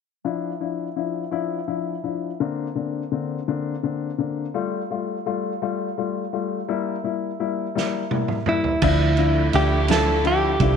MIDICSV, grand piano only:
0, 0, Header, 1, 2, 480
1, 0, Start_track
1, 0, Key_signature, -1, "minor"
1, 0, Tempo, 713436
1, 170, Time_signature, 6, 3, 24, 8
1, 7243, End_track
2, 0, Start_track
2, 0, Title_t, "Grand piano"
2, 0, Program_c, 0, 0
2, 166, Note_on_c, 0, 53, 47
2, 167, Note_on_c, 0, 62, 46
2, 170, Note_on_c, 0, 64, 52
2, 343, Note_off_c, 0, 53, 0
2, 344, Note_off_c, 0, 62, 0
2, 345, Note_off_c, 0, 64, 0
2, 406, Note_on_c, 0, 53, 36
2, 408, Note_on_c, 0, 62, 36
2, 410, Note_on_c, 0, 64, 43
2, 584, Note_off_c, 0, 53, 0
2, 585, Note_off_c, 0, 62, 0
2, 585, Note_off_c, 0, 64, 0
2, 647, Note_on_c, 0, 53, 45
2, 649, Note_on_c, 0, 62, 37
2, 651, Note_on_c, 0, 64, 47
2, 825, Note_off_c, 0, 53, 0
2, 825, Note_off_c, 0, 62, 0
2, 827, Note_off_c, 0, 64, 0
2, 883, Note_on_c, 0, 53, 53
2, 886, Note_on_c, 0, 62, 42
2, 890, Note_on_c, 0, 64, 59
2, 1063, Note_off_c, 0, 53, 0
2, 1064, Note_off_c, 0, 62, 0
2, 1067, Note_off_c, 0, 64, 0
2, 1127, Note_on_c, 0, 53, 42
2, 1128, Note_on_c, 0, 62, 35
2, 1129, Note_on_c, 0, 64, 49
2, 1305, Note_off_c, 0, 53, 0
2, 1306, Note_off_c, 0, 62, 0
2, 1306, Note_off_c, 0, 64, 0
2, 1369, Note_on_c, 0, 53, 40
2, 1369, Note_on_c, 0, 62, 38
2, 1370, Note_on_c, 0, 64, 43
2, 1547, Note_off_c, 0, 53, 0
2, 1547, Note_off_c, 0, 62, 0
2, 1547, Note_off_c, 0, 64, 0
2, 1615, Note_on_c, 0, 50, 46
2, 1616, Note_on_c, 0, 58, 52
2, 1618, Note_on_c, 0, 60, 50
2, 1618, Note_on_c, 0, 62, 58
2, 1790, Note_off_c, 0, 50, 0
2, 1790, Note_off_c, 0, 58, 0
2, 1792, Note_off_c, 0, 60, 0
2, 1792, Note_off_c, 0, 62, 0
2, 1852, Note_on_c, 0, 50, 37
2, 1854, Note_on_c, 0, 58, 41
2, 1856, Note_on_c, 0, 60, 35
2, 1857, Note_on_c, 0, 62, 45
2, 2029, Note_off_c, 0, 50, 0
2, 2030, Note_off_c, 0, 58, 0
2, 2031, Note_off_c, 0, 60, 0
2, 2032, Note_off_c, 0, 62, 0
2, 2096, Note_on_c, 0, 50, 45
2, 2097, Note_on_c, 0, 58, 40
2, 2098, Note_on_c, 0, 60, 42
2, 2100, Note_on_c, 0, 62, 46
2, 2271, Note_off_c, 0, 50, 0
2, 2271, Note_off_c, 0, 58, 0
2, 2272, Note_off_c, 0, 60, 0
2, 2273, Note_off_c, 0, 62, 0
2, 2339, Note_on_c, 0, 50, 52
2, 2341, Note_on_c, 0, 58, 50
2, 2341, Note_on_c, 0, 60, 48
2, 2342, Note_on_c, 0, 62, 61
2, 2513, Note_off_c, 0, 50, 0
2, 2514, Note_off_c, 0, 58, 0
2, 2514, Note_off_c, 0, 60, 0
2, 2515, Note_off_c, 0, 62, 0
2, 2577, Note_on_c, 0, 50, 41
2, 2578, Note_on_c, 0, 58, 38
2, 2582, Note_on_c, 0, 60, 40
2, 2582, Note_on_c, 0, 62, 52
2, 2752, Note_off_c, 0, 50, 0
2, 2753, Note_off_c, 0, 58, 0
2, 2754, Note_off_c, 0, 60, 0
2, 2754, Note_off_c, 0, 62, 0
2, 2814, Note_on_c, 0, 50, 43
2, 2814, Note_on_c, 0, 58, 40
2, 2817, Note_on_c, 0, 60, 35
2, 2820, Note_on_c, 0, 62, 49
2, 2991, Note_off_c, 0, 50, 0
2, 2991, Note_off_c, 0, 58, 0
2, 2992, Note_off_c, 0, 60, 0
2, 2994, Note_off_c, 0, 62, 0
2, 3056, Note_on_c, 0, 55, 56
2, 3060, Note_on_c, 0, 57, 53
2, 3061, Note_on_c, 0, 65, 54
2, 3232, Note_off_c, 0, 55, 0
2, 3234, Note_off_c, 0, 57, 0
2, 3234, Note_off_c, 0, 65, 0
2, 3299, Note_on_c, 0, 55, 43
2, 3302, Note_on_c, 0, 57, 41
2, 3306, Note_on_c, 0, 65, 49
2, 3474, Note_off_c, 0, 55, 0
2, 3475, Note_off_c, 0, 57, 0
2, 3477, Note_off_c, 0, 65, 0
2, 3538, Note_on_c, 0, 57, 46
2, 3539, Note_on_c, 0, 55, 50
2, 3543, Note_on_c, 0, 65, 57
2, 3713, Note_off_c, 0, 57, 0
2, 3714, Note_off_c, 0, 55, 0
2, 3716, Note_off_c, 0, 65, 0
2, 3780, Note_on_c, 0, 55, 55
2, 3782, Note_on_c, 0, 57, 45
2, 3785, Note_on_c, 0, 65, 58
2, 3954, Note_off_c, 0, 55, 0
2, 3955, Note_off_c, 0, 57, 0
2, 3956, Note_off_c, 0, 65, 0
2, 4021, Note_on_c, 0, 55, 43
2, 4023, Note_on_c, 0, 57, 41
2, 4026, Note_on_c, 0, 65, 48
2, 4195, Note_off_c, 0, 55, 0
2, 4196, Note_off_c, 0, 57, 0
2, 4197, Note_off_c, 0, 65, 0
2, 4258, Note_on_c, 0, 55, 50
2, 4261, Note_on_c, 0, 57, 46
2, 4261, Note_on_c, 0, 65, 47
2, 4433, Note_off_c, 0, 55, 0
2, 4434, Note_off_c, 0, 57, 0
2, 4435, Note_off_c, 0, 65, 0
2, 4497, Note_on_c, 0, 55, 58
2, 4500, Note_on_c, 0, 58, 54
2, 4500, Note_on_c, 0, 64, 61
2, 4673, Note_off_c, 0, 55, 0
2, 4674, Note_off_c, 0, 58, 0
2, 4674, Note_off_c, 0, 64, 0
2, 4734, Note_on_c, 0, 55, 43
2, 4736, Note_on_c, 0, 58, 40
2, 4740, Note_on_c, 0, 64, 52
2, 4911, Note_off_c, 0, 55, 0
2, 4912, Note_off_c, 0, 58, 0
2, 4914, Note_off_c, 0, 64, 0
2, 4977, Note_on_c, 0, 55, 50
2, 4979, Note_on_c, 0, 58, 42
2, 4979, Note_on_c, 0, 64, 61
2, 5152, Note_off_c, 0, 55, 0
2, 5153, Note_off_c, 0, 58, 0
2, 5153, Note_off_c, 0, 64, 0
2, 5216, Note_on_c, 0, 55, 62
2, 5220, Note_on_c, 0, 64, 62
2, 5221, Note_on_c, 0, 58, 52
2, 5392, Note_off_c, 0, 55, 0
2, 5394, Note_off_c, 0, 58, 0
2, 5394, Note_off_c, 0, 64, 0
2, 5454, Note_on_c, 0, 55, 45
2, 5455, Note_on_c, 0, 58, 43
2, 5456, Note_on_c, 0, 64, 51
2, 5630, Note_off_c, 0, 55, 0
2, 5631, Note_off_c, 0, 58, 0
2, 5631, Note_off_c, 0, 64, 0
2, 5693, Note_on_c, 0, 55, 50
2, 5694, Note_on_c, 0, 58, 45
2, 5699, Note_on_c, 0, 64, 52
2, 5869, Note_off_c, 0, 55, 0
2, 5870, Note_off_c, 0, 58, 0
2, 5873, Note_off_c, 0, 64, 0
2, 5937, Note_on_c, 0, 53, 88
2, 5940, Note_on_c, 0, 62, 75
2, 5943, Note_on_c, 0, 64, 88
2, 6111, Note_off_c, 0, 53, 0
2, 6113, Note_off_c, 0, 62, 0
2, 6114, Note_off_c, 0, 64, 0
2, 6174, Note_on_c, 0, 53, 63
2, 6174, Note_on_c, 0, 62, 60
2, 6179, Note_on_c, 0, 64, 69
2, 6349, Note_off_c, 0, 53, 0
2, 6350, Note_off_c, 0, 62, 0
2, 6352, Note_off_c, 0, 64, 0
2, 6415, Note_on_c, 0, 62, 61
2, 6416, Note_on_c, 0, 53, 64
2, 6419, Note_on_c, 0, 64, 73
2, 6590, Note_off_c, 0, 53, 0
2, 6590, Note_off_c, 0, 62, 0
2, 6592, Note_off_c, 0, 64, 0
2, 6655, Note_on_c, 0, 53, 71
2, 6655, Note_on_c, 0, 62, 74
2, 6658, Note_on_c, 0, 64, 83
2, 6829, Note_off_c, 0, 53, 0
2, 6829, Note_off_c, 0, 62, 0
2, 6831, Note_off_c, 0, 64, 0
2, 6890, Note_on_c, 0, 53, 72
2, 6892, Note_on_c, 0, 62, 53
2, 6894, Note_on_c, 0, 64, 71
2, 7066, Note_off_c, 0, 53, 0
2, 7067, Note_off_c, 0, 62, 0
2, 7068, Note_off_c, 0, 64, 0
2, 7135, Note_on_c, 0, 53, 59
2, 7135, Note_on_c, 0, 62, 58
2, 7138, Note_on_c, 0, 64, 71
2, 7243, Note_off_c, 0, 53, 0
2, 7243, Note_off_c, 0, 62, 0
2, 7243, Note_off_c, 0, 64, 0
2, 7243, End_track
0, 0, End_of_file